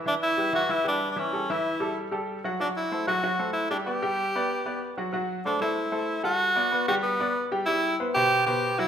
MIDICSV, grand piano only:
0, 0, Header, 1, 2, 480
1, 0, Start_track
1, 0, Tempo, 317628
1, 83, Time_signature, 4, 2, 24, 8
1, 13418, End_track
2, 0, Start_track
2, 0, Title_t, "Grand piano"
2, 0, Program_c, 0, 0
2, 85, Note_on_c, 0, 52, 64
2, 97, Note_on_c, 0, 76, 66
2, 100, Note_on_c, 0, 64, 62
2, 478, Note_off_c, 0, 52, 0
2, 485, Note_off_c, 0, 76, 0
2, 487, Note_off_c, 0, 64, 0
2, 564, Note_on_c, 0, 55, 60
2, 567, Note_on_c, 0, 67, 61
2, 579, Note_on_c, 0, 71, 61
2, 760, Note_off_c, 0, 55, 0
2, 762, Note_off_c, 0, 67, 0
2, 769, Note_off_c, 0, 71, 0
2, 799, Note_on_c, 0, 52, 82
2, 804, Note_on_c, 0, 64, 81
2, 812, Note_on_c, 0, 76, 81
2, 997, Note_off_c, 0, 52, 0
2, 1000, Note_off_c, 0, 64, 0
2, 1005, Note_off_c, 0, 76, 0
2, 1043, Note_on_c, 0, 52, 71
2, 1043, Note_on_c, 0, 64, 80
2, 1052, Note_on_c, 0, 76, 73
2, 1239, Note_off_c, 0, 52, 0
2, 1240, Note_off_c, 0, 64, 0
2, 1245, Note_off_c, 0, 76, 0
2, 1275, Note_on_c, 0, 55, 68
2, 1276, Note_on_c, 0, 67, 66
2, 1283, Note_on_c, 0, 71, 70
2, 1672, Note_off_c, 0, 55, 0
2, 1672, Note_off_c, 0, 67, 0
2, 1676, Note_off_c, 0, 71, 0
2, 1755, Note_on_c, 0, 52, 74
2, 1760, Note_on_c, 0, 64, 78
2, 1767, Note_on_c, 0, 76, 70
2, 1955, Note_off_c, 0, 52, 0
2, 1958, Note_off_c, 0, 64, 0
2, 1962, Note_off_c, 0, 76, 0
2, 2006, Note_on_c, 0, 55, 55
2, 2013, Note_on_c, 0, 67, 59
2, 2021, Note_on_c, 0, 69, 64
2, 2201, Note_off_c, 0, 55, 0
2, 2206, Note_off_c, 0, 67, 0
2, 2210, Note_off_c, 0, 69, 0
2, 2261, Note_on_c, 0, 52, 77
2, 2266, Note_on_c, 0, 64, 87
2, 2266, Note_on_c, 0, 76, 85
2, 2647, Note_off_c, 0, 52, 0
2, 2649, Note_off_c, 0, 64, 0
2, 2649, Note_off_c, 0, 76, 0
2, 2722, Note_on_c, 0, 55, 70
2, 2724, Note_on_c, 0, 67, 69
2, 2738, Note_on_c, 0, 69, 72
2, 3115, Note_off_c, 0, 55, 0
2, 3117, Note_off_c, 0, 67, 0
2, 3125, Note_off_c, 0, 69, 0
2, 3195, Note_on_c, 0, 55, 67
2, 3205, Note_on_c, 0, 67, 69
2, 3209, Note_on_c, 0, 69, 72
2, 3591, Note_off_c, 0, 55, 0
2, 3597, Note_off_c, 0, 67, 0
2, 3600, Note_off_c, 0, 69, 0
2, 3692, Note_on_c, 0, 54, 74
2, 3696, Note_on_c, 0, 66, 75
2, 3707, Note_on_c, 0, 78, 77
2, 3884, Note_off_c, 0, 54, 0
2, 3887, Note_off_c, 0, 66, 0
2, 3893, Note_off_c, 0, 78, 0
2, 3927, Note_on_c, 0, 54, 70
2, 3934, Note_on_c, 0, 66, 63
2, 3938, Note_on_c, 0, 78, 63
2, 4318, Note_off_c, 0, 54, 0
2, 4322, Note_off_c, 0, 66, 0
2, 4324, Note_off_c, 0, 78, 0
2, 4407, Note_on_c, 0, 57, 64
2, 4412, Note_on_c, 0, 72, 68
2, 4417, Note_on_c, 0, 69, 65
2, 4601, Note_off_c, 0, 57, 0
2, 4604, Note_off_c, 0, 72, 0
2, 4607, Note_off_c, 0, 69, 0
2, 4643, Note_on_c, 0, 54, 84
2, 4647, Note_on_c, 0, 66, 80
2, 4656, Note_on_c, 0, 78, 85
2, 4839, Note_off_c, 0, 54, 0
2, 4841, Note_off_c, 0, 66, 0
2, 4846, Note_off_c, 0, 78, 0
2, 4883, Note_on_c, 0, 54, 73
2, 4888, Note_on_c, 0, 78, 77
2, 4889, Note_on_c, 0, 66, 82
2, 5079, Note_off_c, 0, 54, 0
2, 5082, Note_off_c, 0, 78, 0
2, 5083, Note_off_c, 0, 66, 0
2, 5123, Note_on_c, 0, 57, 73
2, 5127, Note_on_c, 0, 69, 72
2, 5129, Note_on_c, 0, 72, 66
2, 5516, Note_off_c, 0, 57, 0
2, 5518, Note_off_c, 0, 69, 0
2, 5519, Note_off_c, 0, 72, 0
2, 5601, Note_on_c, 0, 55, 72
2, 5606, Note_on_c, 0, 67, 78
2, 5608, Note_on_c, 0, 79, 79
2, 5797, Note_off_c, 0, 55, 0
2, 5800, Note_off_c, 0, 67, 0
2, 5802, Note_off_c, 0, 79, 0
2, 5834, Note_on_c, 0, 71, 55
2, 5839, Note_on_c, 0, 59, 61
2, 5846, Note_on_c, 0, 74, 62
2, 6033, Note_off_c, 0, 71, 0
2, 6036, Note_off_c, 0, 59, 0
2, 6041, Note_off_c, 0, 74, 0
2, 6080, Note_on_c, 0, 55, 78
2, 6083, Note_on_c, 0, 79, 77
2, 6085, Note_on_c, 0, 67, 89
2, 6474, Note_off_c, 0, 55, 0
2, 6475, Note_off_c, 0, 79, 0
2, 6477, Note_off_c, 0, 67, 0
2, 6578, Note_on_c, 0, 59, 74
2, 6582, Note_on_c, 0, 71, 69
2, 6589, Note_on_c, 0, 74, 77
2, 6964, Note_off_c, 0, 59, 0
2, 6967, Note_off_c, 0, 71, 0
2, 6971, Note_off_c, 0, 74, 0
2, 7038, Note_on_c, 0, 59, 68
2, 7041, Note_on_c, 0, 71, 74
2, 7045, Note_on_c, 0, 74, 64
2, 7432, Note_off_c, 0, 59, 0
2, 7434, Note_off_c, 0, 71, 0
2, 7437, Note_off_c, 0, 74, 0
2, 7518, Note_on_c, 0, 54, 74
2, 7522, Note_on_c, 0, 66, 73
2, 7527, Note_on_c, 0, 78, 67
2, 7716, Note_off_c, 0, 54, 0
2, 7718, Note_off_c, 0, 66, 0
2, 7721, Note_off_c, 0, 78, 0
2, 7747, Note_on_c, 0, 54, 77
2, 7760, Note_on_c, 0, 66, 73
2, 7762, Note_on_c, 0, 78, 72
2, 8146, Note_off_c, 0, 54, 0
2, 8154, Note_off_c, 0, 66, 0
2, 8155, Note_off_c, 0, 78, 0
2, 8242, Note_on_c, 0, 57, 72
2, 8250, Note_on_c, 0, 72, 72
2, 8251, Note_on_c, 0, 69, 62
2, 8438, Note_off_c, 0, 57, 0
2, 8443, Note_off_c, 0, 69, 0
2, 8443, Note_off_c, 0, 72, 0
2, 8475, Note_on_c, 0, 57, 76
2, 8476, Note_on_c, 0, 69, 69
2, 8488, Note_on_c, 0, 72, 77
2, 8870, Note_off_c, 0, 57, 0
2, 8872, Note_off_c, 0, 69, 0
2, 8878, Note_off_c, 0, 72, 0
2, 8940, Note_on_c, 0, 57, 68
2, 8945, Note_on_c, 0, 69, 74
2, 8948, Note_on_c, 0, 72, 72
2, 9342, Note_off_c, 0, 57, 0
2, 9345, Note_off_c, 0, 69, 0
2, 9346, Note_off_c, 0, 72, 0
2, 9420, Note_on_c, 0, 55, 76
2, 9426, Note_on_c, 0, 69, 78
2, 9430, Note_on_c, 0, 78, 79
2, 9822, Note_off_c, 0, 55, 0
2, 9825, Note_off_c, 0, 69, 0
2, 9828, Note_off_c, 0, 78, 0
2, 9904, Note_on_c, 0, 59, 74
2, 9917, Note_on_c, 0, 71, 73
2, 9921, Note_on_c, 0, 74, 73
2, 10108, Note_off_c, 0, 59, 0
2, 10115, Note_off_c, 0, 71, 0
2, 10118, Note_off_c, 0, 74, 0
2, 10149, Note_on_c, 0, 59, 68
2, 10152, Note_on_c, 0, 71, 70
2, 10159, Note_on_c, 0, 74, 63
2, 10351, Note_off_c, 0, 59, 0
2, 10352, Note_off_c, 0, 71, 0
2, 10357, Note_off_c, 0, 74, 0
2, 10400, Note_on_c, 0, 55, 94
2, 10409, Note_on_c, 0, 67, 87
2, 10409, Note_on_c, 0, 79, 93
2, 10794, Note_off_c, 0, 55, 0
2, 10799, Note_off_c, 0, 79, 0
2, 10800, Note_off_c, 0, 67, 0
2, 10881, Note_on_c, 0, 59, 71
2, 10881, Note_on_c, 0, 71, 73
2, 10891, Note_on_c, 0, 74, 74
2, 11275, Note_off_c, 0, 59, 0
2, 11275, Note_off_c, 0, 71, 0
2, 11281, Note_off_c, 0, 74, 0
2, 11358, Note_on_c, 0, 55, 80
2, 11365, Note_on_c, 0, 79, 83
2, 11366, Note_on_c, 0, 67, 80
2, 11556, Note_off_c, 0, 55, 0
2, 11560, Note_off_c, 0, 79, 0
2, 11561, Note_off_c, 0, 67, 0
2, 11595, Note_on_c, 0, 55, 77
2, 11603, Note_on_c, 0, 67, 74
2, 11609, Note_on_c, 0, 79, 75
2, 11992, Note_off_c, 0, 55, 0
2, 11996, Note_off_c, 0, 67, 0
2, 11999, Note_off_c, 0, 79, 0
2, 12084, Note_on_c, 0, 59, 71
2, 12090, Note_on_c, 0, 72, 68
2, 12092, Note_on_c, 0, 71, 70
2, 12280, Note_off_c, 0, 59, 0
2, 12284, Note_off_c, 0, 72, 0
2, 12285, Note_off_c, 0, 71, 0
2, 12330, Note_on_c, 0, 47, 79
2, 12330, Note_on_c, 0, 71, 74
2, 12335, Note_on_c, 0, 72, 82
2, 12720, Note_off_c, 0, 47, 0
2, 12720, Note_off_c, 0, 71, 0
2, 12723, Note_off_c, 0, 72, 0
2, 12791, Note_on_c, 0, 47, 75
2, 12805, Note_on_c, 0, 71, 76
2, 12806, Note_on_c, 0, 72, 71
2, 13189, Note_off_c, 0, 47, 0
2, 13197, Note_off_c, 0, 71, 0
2, 13198, Note_off_c, 0, 72, 0
2, 13274, Note_on_c, 0, 66, 75
2, 13277, Note_on_c, 0, 54, 83
2, 13285, Note_on_c, 0, 78, 76
2, 13418, Note_off_c, 0, 54, 0
2, 13418, Note_off_c, 0, 66, 0
2, 13418, Note_off_c, 0, 78, 0
2, 13418, End_track
0, 0, End_of_file